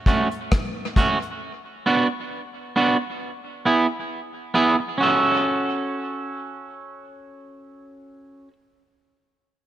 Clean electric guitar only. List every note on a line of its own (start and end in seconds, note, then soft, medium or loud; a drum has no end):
0.07 0.27 A3 medium
0.07 0.27 C#4 medium
0.07 0.28 F#4 medium
0.97 1.17 A3 medium
0.97 1.17 C#4 medium
0.97 1.17 F#4 medium
1.86 2.06 B3 medium
1.86 2.07 D4 medium
1.86 2.07 F#4 medium
2.76 2.96 B3 medium
2.76 2.96 D4 medium
2.76 2.97 F#4 medium
3.65 3.86 B3 medium
3.65 3.86 E4 medium
3.65 3.86 G#4 medium
4.54 4.75 B3 medium
4.54 4.75 E4 medium
4.54 4.75 G#4 medium
4.79 muted clean electric guitar stroke soft
4.98 8.48 C#4 medium
4.98 8.50 F#4 medium
5.03 8.53 A4 medium